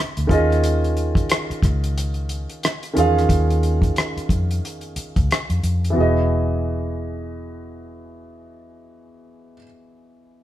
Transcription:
Already playing: grand piano D3 C4 E4 G4 D5
0.17 fingered electric bass D2, closed hi-hat
0.27 fingered electric bass D#2, grand piano D#3 C#4 F4 G#4, kick, closed hi-hat
0.33 grand piano D#5
0.52 closed hi-hat
0.64 closed hi-hat
0.84 closed hi-hat
0.97 closed hi-hat
1.15 kick, closed hi-hat
1.29 cross-stick, closed hi-hat
1.50 muted fingered electric bass stroke, closed hi-hat
1.63 fingered electric bass C#2, kick, cross-stick, closed hi-hat
1.84 closed hi-hat
1.98 closed hi-hat
2.14 closed hi-hat
2.29 closed hi-hat
2.49 closed hi-hat
2.63 cross-stick, closed hi-hat
2.83 closed hi-hat
2.93 fingered electric bass E2, grand piano D#3 C#4 F4, closed hi-hat
2.98 grand piano G#4 F5
3.18 cross-stick, closed hi-hat
3.29 fingered electric bass D#2, kick, closed hi-hat
3.50 closed hi-hat
3.63 closed hi-hat
3.82 kick, closed hi-hat
3.96 cross-stick, closed hi-hat
4.17 muted fingered electric bass stroke, closed hi-hat
4.29 fingered electric bass F2, kick, closed hi-hat
4.51 closed hi-hat
4.65 closed hi-hat
4.81 closed hi-hat
4.96 muted fingered electric bass stroke, closed hi-hat
5.16 fingered electric bass C#2, kick, closed hi-hat
5.31 cross-stick, closed hi-hat
5.50 fingered electric bass F2, closed hi-hat
5.63 fingered electric bass F2, closed hi-hat
5.85 closed hi-hat
5.90 grand piano E3 B3
5.95 fingered electric bass E1, grand piano F#4 G#4
6.01 grand piano D#5

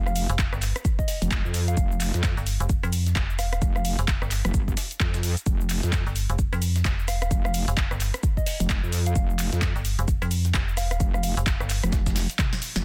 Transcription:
Already playing: wobble bass F1
0.06 synth bell F5, cross-stick, shaker
0.16 synth bell F5, open hi-hat, shaker
0.29 fm bass F1, closed hi-hat, shaker
0.39 kick, snare, clap, closed hi-hat, shaker
0.53 fm bass G1, cross-stick, shaker
0.62 clap, open hi-hat, shaker
0.76 cross-stick, closed hi-hat, shaker
0.85 kick, closed hi-hat, shaker
0.99 synth bell D#5, kick, shaker
1.08 synth bell D#5, open hi-hat, shaker
1.22 wobble bass F1, closed hi-hat, shaker
1.31 kick, snare, clap, closed hi-hat, shaker
1.45 wobble bass F2, shaker
1.54 open hi-hat, shaker
1.68 synth bell F5, closed hi-hat, shaker
1.77 wobble bass F1, kick, closed hi-hat, shaker
1.92 shaker
2.00 clap, open hi-hat, shaker
2.14 wobble bass F2, snare, closed hi-hat, shaker
2.23 kick, snare, clap, closed hi-hat, shaker
2.37 fm bass G1, closed hi-hat, shaker
2.46 open hi-hat, shaker
2.60 fm bass F1, closed hi-hat, shaker
2.69 kick, closed hi-hat, shaker
2.83 fm bass F2, cross-stick, closed hi-hat, shaker
2.93 open hi-hat, shaker
3.06 snare, closed hi-hat, shaker
3.16 fm bass F1, kick, snare, clap, closed hi-hat, shaker
3.30 shaker
3.39 synth bell F5, cross-stick, open hi-hat, shaker
3.53 synth bell F5, cross-stick, closed hi-hat, shaker
3.62 wobble bass F1, kick, closed hi-hat, shaker
3.76 synth bell F5, cross-stick, shaker
3.85 synth bell F5, open hi-hat, shaker
3.99 fm bass F1, closed hi-hat, shaker
4.08 kick, snare, clap, closed hi-hat, shaker
4.22 fm bass G1, cross-stick, shaker
4.31 clap, open hi-hat, shaker
4.45 wobble bass F1, cross-stick, closed hi-hat, shaker
4.54 wobble bass G1, kick, closed hi-hat, shaker
4.68 kick, shaker
4.77 snare, open hi-hat, shaker
4.91 closed hi-hat, shaker
5.00 wobble bass F2, kick, clap, closed hi-hat, shaker
5.14 snare, shaker
5.23 open hi-hat, shaker
5.37 closed hi-hat, shaker
5.46 wobble bass F1, kick, closed hi-hat, shaker
5.61 shaker
5.69 clap, open hi-hat, shaker
5.83 wobble bass F2, snare, closed hi-hat, shaker
5.92 kick, snare, clap, closed hi-hat, shaker
6.06 fm bass G1, closed hi-hat, shaker
6.16 open hi-hat, shaker
6.30 fm bass F1, closed hi-hat, shaker
6.39 kick, closed hi-hat, shaker
6.53 fm bass F2, cross-stick, closed hi-hat, shaker
6.62 open hi-hat, shaker
6.76 snare, closed hi-hat, shaker
6.85 fm bass F1, kick, snare, clap, closed hi-hat, shaker
6.99 shaker
7.08 synth bell F5, cross-stick, open hi-hat, shaker
7.22 synth bell F5, cross-stick, closed hi-hat, shaker
7.31 wobble bass F1, kick, closed hi-hat, shaker
7.45 synth bell F5, cross-stick, shaker
7.54 synth bell F5, open hi-hat, shaker
7.68 fm bass F1, closed hi-hat, shaker
7.77 kick, snare, clap, closed hi-hat, shaker
7.91 fm bass G1, cross-stick, shaker
8.00 clap, open hi-hat, shaker
8.14 cross-stick, closed hi-hat, shaker
8.23 kick, closed hi-hat, shaker
8.37 synth bell D#5, kick, shaker
8.46 synth bell D#5, open hi-hat, shaker
8.60 wobble bass F1, closed hi-hat, shaker
8.69 kick, snare, clap, closed hi-hat, shaker
8.83 wobble bass F2, shaker
8.92 open hi-hat, shaker
9.06 synth bell F5, closed hi-hat, shaker
9.16 wobble bass F1, kick, closed hi-hat, shaker
9.30 shaker
9.39 clap, open hi-hat, shaker
9.52 wobble bass F2, snare, closed hi-hat, shaker
9.62 kick, snare, clap, closed hi-hat, shaker
9.76 fm bass G1, closed hi-hat, shaker
9.85 open hi-hat, shaker
9.99 fm bass F1, closed hi-hat, shaker
10.08 kick, closed hi-hat, shaker
10.22 fm bass F2, cross-stick, closed hi-hat, shaker
10.31 open hi-hat, shaker
10.45 snare, closed hi-hat, shaker
10.54 fm bass F1, kick, snare, clap, closed hi-hat, shaker
10.68 shaker
10.77 synth bell F5, cross-stick, open hi-hat, shaker
10.91 synth bell F5, cross-stick, closed hi-hat, shaker
11.00 wobble bass F1, kick, closed hi-hat, shaker
11.14 synth bell F5, cross-stick, shaker
11.23 synth bell F5, open hi-hat, shaker
11.37 fm bass F1, closed hi-hat, shaker
11.46 kick, snare, clap, closed hi-hat, shaker
11.60 fm bass G1, cross-stick, shaker
11.69 clap, open hi-hat, shaker
11.83 wobble bass F1, cross-stick, closed hi-hat, shaker
11.93 kick, snare, closed hi-hat, shaker
12.06 kick, snare, shaker
12.16 snare, open hi-hat, shaker
12.30 closed hi-hat, shaker
12.39 kick, snare, clap, closed hi-hat, mid tom, shaker
12.53 snare, shaker
12.62 open hi-hat, shaker
12.76 wobble bass F1, snare, closed hi-hat, shaker

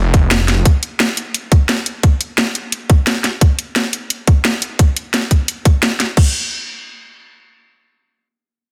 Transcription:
Already playing: detuned saw bass F1, ambient pad F4 F5
0.14 kick, closed hi-hat
0.31 detuned saw bass F1, snare, closed hi-hat
0.48 snare, closed hi-hat
0.65 kick, closed hi-hat
0.83 closed hi-hat
1.00 snare, closed hi-hat
1.17 closed hi-hat
1.34 closed hi-hat
1.52 kick, closed hi-hat
1.69 snare, closed hi-hat
1.86 closed hi-hat
2.03 kick, closed hi-hat
2.21 closed hi-hat
2.38 snare, closed hi-hat
2.55 closed hi-hat
2.72 closed hi-hat
2.90 kick, closed hi-hat
3.07 snare, closed hi-hat
3.24 snare, closed hi-hat
3.41 kick, closed hi-hat
3.59 closed hi-hat
3.76 snare, closed hi-hat
3.93 closed hi-hat
4.10 closed hi-hat
4.27 kick, closed hi-hat
4.45 snare, closed hi-hat
4.62 closed hi-hat
4.79 kick, closed hi-hat
4.97 closed hi-hat
5.14 snare, closed hi-hat
5.31 kick, closed hi-hat
5.48 closed hi-hat
5.65 kick, closed hi-hat
5.83 snare, closed hi-hat
6.00 snare, closed hi-hat
6.17 kick, crash

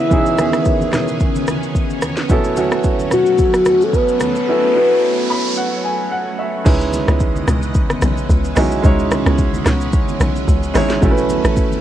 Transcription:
Already playing: string machine C#3 B3 G#4, grand piano E3 B3 C#4 D#4 F#4
0.00 soft synth lead E5
0.10 grand piano E3 B3 C#4 D#4 G#4, string machine C#4, kick, low conga, shaker
0.26 shaker
0.37 grand piano D#3 E3 B3 C#4 G#4, cross-stick, high conga, shaker
0.53 cross-stick, shaker
0.65 kick, shaker
0.81 high conga, shaker
0.93 cross-stick, snare, low conga, shaker
1.08 shaker
1.20 kick, shaker
1.35 high conga, shaker
1.47 cross-stick, high conga, shaker
1.63 shaker
1.75 kick, shaker
1.90 shaker
2.02 cross-stick, high conga, shaker
2.17 snare, shaker
2.28 grand piano F#3 B3 C#4 E4 A4, string machine F#3 A3, kick, riser, low conga, shaker
2.44 shaker
2.55 grand piano F#3 B3 C#4 E4 F#4, high conga, shaker
2.71 cross-stick, shaker
2.83 kick, shaker
2.99 high conga, shaker
3.11 soft synth lead F#4, cross-stick, low conga, shaker
3.26 shaker
3.38 kick, shaker
3.54 cross-stick, high conga, shaker
3.65 cross-stick, high conga, shaker
3.81 soft synth lead A4, shaker
3.93 soft synth lead B4, kick, shaker
4.08 shaker
4.20 soft synth lead B4, cross-stick, high conga, shaker
4.35 shaker
4.47 grand piano F#3 B3 C#4 E4 A4
4.74 grand piano F#3 B3 C#4 E4 B4
5.30 grand piano B5
5.57 grand piano F#5
5.84 grand piano G#5
6.12 grand piano F#5
6.39 grand piano E5
6.65 log drum bass C#2, string machine C#3 E3 B3 D#5, grand piano G#3 C#4 D#4 E4 B4, kick, crash, low conga, shaker
6.81 shaker
6.93 high conga, shaker
7.08 log drum bass C#2, cross-stick, shaker
7.20 kick, shaker
7.35 high conga, shaker
7.48 log drum bass C#2, cross-stick, low conga, shaker
7.62 shaker
7.74 kick, shaker
7.90 cross-stick, high conga, shaker
8.02 log drum bass B1, cross-stick, high conga, shaker
8.17 shaker
8.29 log drum bass C#2, kick, shaker
8.45 shaker
8.55 log drum bass B1, grand piano G#3 C#4 D#4 E4 F#4, cross-stick, open hi-hat, high conga, shaker
8.71 shaker
8.82 log drum bass C#2, grand piano G#3 C#4 D#4 E4 C#5, string machine C#4, kick, low conga, shaker
8.99 shaker
9.11 cross-stick, high conga, shaker
9.26 log drum bass C#2, cross-stick, shaker
9.38 kick, shaker
9.54 high conga, shaker
9.66 log drum bass C#2, cross-stick, snare, low conga, shaker
9.81 shaker
9.93 kick, shaker
10.08 high conga, shaker
10.20 log drum bass B1, cross-stick, high conga, shaker
10.36 shaker
10.48 log drum bass C#2, kick, shaker
10.63 shaker
10.74 log drum bass G#1, grand piano G#3 C#4 D#4 E4 C#5, cross-stick, open hi-hat, high conga, shaker
10.90 snare, shaker
11.01 log drum bass A1, string machine F#3 A3, grand piano A3 C#4 E4 F#4 A4, kick, low conga, shaker
11.11 grand piano B4
11.17 shaker
11.29 high conga, shaker
11.44 log drum bass A1, cross-stick, shaker
11.57 kick, shaker
11.72 high conga, shaker

